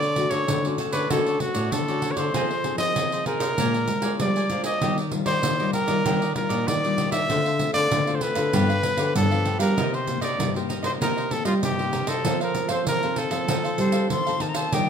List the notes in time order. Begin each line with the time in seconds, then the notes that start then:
Already playing: D3 D5
0.02 A4 C#5 D5, pandeiro
0.16 A3 C#4 F#4, muted cavaquinho stroke, pandeiro
0.30 D3 A4 C#5 D5, pandeiro
0.48 A2 D3, pandeiro
0.65 A3 C#4 F#4 A4 C#5 D5, pandeiro
0.78 F#4 A4 C#5 D5, pandeiro
0.92 D3 A4 B4 C#5 D5, pandeiro
1.10 D3 A3 C#4 F#4 A4 C#5 D5, pandeiro
1.26 A4 C#5 D5, pandeiro
1.40 A3 C#4 F#4, muted cavaquinho stroke, pandeiro
1.54 A2 A4 C#5 D5, pandeiro
1.72 A2 D3 A4, pandeiro
1.88 A3 C#4 F#4 A4 C#5 D5, pandeiro
2.02 F#4 A4 C#5 D5, pandeiro
2.11 C#5
2.16 D3 A4 C5 C#5 D5, pandeiro
2.34 F3 C4 D#4 F4 G#4 C5 D#5, pandeiro
2.50 G#4 C5 D#5, pandeiro
2.64 C4 D#4 G#4, muted cavaquinho stroke, pandeiro
2.78 F3 G#4 C5 D#5, pandeiro
2.96 C3 F3, pandeiro
3.12 G#4 C5 D#5, pandeiro
3.26 C4 D#4 F4 G#4 A#4 C5 D#5, pandeiro
3.40 C3 G#4 C5 D#5, pandeiro
3.58 A#2 G#3 D4 F4 A#4 D5 G#5, pandeiro
3.74 A#4 D5 G#5, pandeiro
3.88 G#3, muted cavaquinho stroke, pandeiro
4.02 G#3 D4 F4 A#4 D5 G#5, pandeiro
4.20 F3 G3 D5, pandeiro
4.36 A#4 D5 G#5, pandeiro
4.50 F3 G#3 D4 F4 A#4 D5 G#5, pandeiro
4.64 A#4 D5 D#5 G#5, pandeiro
4.81 D#3 G3 D4 F4 G4 D5 D#5, pandeiro
4.98 G4 D5 D#5, pandeiro
5.12 G3 D4 F4, muted cavaquinho stroke, pandeiro
5.26 D#3 G4 C5 D5 D#5, pandeiro
5.43 A#2 D#3, pandeiro
5.60 G3 D4 F4 G4 D5 D#5, pandeiro
5.73 D4 G4 A#4 D5 D#5, pandeiro
5.87 D#3 G3 D4 F4 G4 D5 D#5, pandeiro
6.05 D#3 G3 D4 F4 G4 D5 D#5, pandeiro
6.21 G4 D5 D#5, pandeiro
6.36 G3 D4 F4 A#4, muted cavaquinho stroke, pandeiro
6.49 A#2 G4 D5 D#5, pandeiro
6.68 A#2 D#3 D5, pandeiro
6.83 G3 D4 F4 G4 D5 D#5, pandeiro
6.97 D4 G4 D5 D#5, pandeiro
7.11 D#3 G4 D5 D#5 E5, pandeiro
7.29 D3 A3 C4 D4 F4 A4 C5 F5, pandeiro
7.45 A4 C5 F5, pandeiro
7.59 A3 C4 F4, muted cavaquinho stroke, pandeiro
7.73 D3 A4 C5 D5 F5, pandeiro
7.91 A2 D3, pandeiro
8.07 A3 C4 F4 A4 C5 F5, pandeiro
8.15 C5
8.21 D4 A4 B4 C5 F5, pandeiro
8.35 D3 A4 C5 F5, pandeiro
8.53 G2 F3 B3 D4 G4 B4 F5, pandeiro
8.69 G4 B4 F5, pandeiro
8.83 F3 B3 D4, muted cavaquinho stroke, pandeiro
8.97 D3 G4 B4 F5, pandeiro
9.15 G2 D3 A4, pandeiro
9.31 F3 B3 D4 G4 B4 F5, pandeiro
9.45 D4 G4 B4 F5, pandeiro
9.59 G3 G4 A#4 B4 F5, pandeiro
9.77 C3 A#3 D#4 G4 A#4 C5 D#5, pandeiro
9.93 A#4 C5 D#5, pandeiro
10.07 A#3 D#4 G4, muted cavaquinho stroke, pandeiro
10.21 C3 A#4 C5 D5 D#5, pandeiro
10.38 G2 C3, pandeiro
10.55 A#3 D#4 G4 A#4 C5 D#5, pandeiro
10.69 D#4 A#4 C5 D#5, pandeiro
10.83 C3 A#4 C5 D#5, pandeiro
11.01 C3 A#3 D#4 G4 A#4 C5 D#5, pandeiro
11.17 A#4 C5 D#5, pandeiro
11.31 A#3 D#4 G4 A4, muted cavaquinho stroke, pandeiro
11.45 G3 F4 A#4 C5 D#5, pandeiro
11.63 G2 C3 G4, pandeiro
11.79 A#3 D#4 G4 A#4 C5 D#5, pandeiro
11.92 D#4 A#4 C5 D#5, pandeiro
12.07 C3 A4 A#4 C5 D#5, pandeiro
12.24 F3 C4 D#4 A4 C5 F5, pandeiro
12.41 A4 A#4 C5 F5, pandeiro
12.54 C4 D#4 A4, muted cavaquinho stroke, pandeiro
12.68 F3 A4 C5 F5, pandeiro
12.87 C3 F3 A#4, pandeiro
13.03 C4 D#4 A4 C5 F5, pandeiro
13.16 D#4 A4 C5 F5, pandeiro
13.31 F3 A4 C5 F5, pandeiro
13.48 F3 C4 D#4 A4 C5 F5, pandeiro
13.64 A4 C5 F5, pandeiro
13.78 G3 C4 D#4 A4 C5, muted cavaquinho stroke, pandeiro
13.92 A4 C5 F5, pandeiro
14.10 C3 F3 C6, pandeiro
14.26 C4 D#4 A4 C5 F5, pandeiro
14.40 D#3 D#4 A4 C5 F5 A5, pandeiro
14.49 A#5
14.54 A4 C5 F5 A5, pandeiro
14.72 D#3 G3 D4 F4 G4 D5 D#5 G5, pandeiro